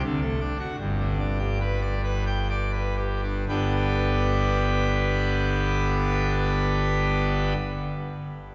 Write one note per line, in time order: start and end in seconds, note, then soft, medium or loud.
0.05 0.20 D2 loud
0.05 0.20 D3 loud
0.22 0.39 A3 medium
0.40 0.58 D4 medium
0.59 0.76 F#4 loud
0.79 3.45 G1 medium
0.79 3.45 G2 medium
1.00 1.18 D3 medium
1.19 1.38 D4 medium
1.39 1.58 G4 medium
1.61 1.80 B4 medium
1.81 2.01 D5 medium
2.04 2.24 B4 medium
2.27 2.47 G5 loud
2.49 2.71 D5 medium
2.72 2.95 B4 medium
2.98 3.20 G4 medium
3.23 3.45 D4 medium
3.49 7.53 G1 medium
3.49 7.53 G2 medium
3.49 7.54 D3 medium
3.49 7.53 B3 medium
3.49 7.53 D4 medium
3.49 7.54 G4 medium
3.49 7.54 B4 medium